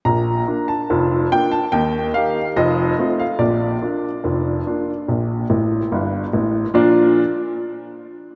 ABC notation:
X:1
M:2/4
L:1/16
Q:1/4=72
K:Bb
V:1 name="Upright piano"
b3 a3 g a | g2 f2 e3 f | d8- | d6 z2 |
[B,,F,DFBd]2 z6 |]
V:2 name="Upright piano" clef=bass
[B,,,B,,]2 [B,DF]2 [F,,,F,,]2 [B,DF]2 | [E,,E,]2 [B,EG]2 [F,,,F,,]2 [A,CF]2 | [B,,,B,,]2 [B,DF]2 [F,,,F,,]2 [B,DF]2 | [B,,,B,,]2 [A,,,A,,]2 [G,,,G,,]2 [A,,,A,,]2 |
z8 |]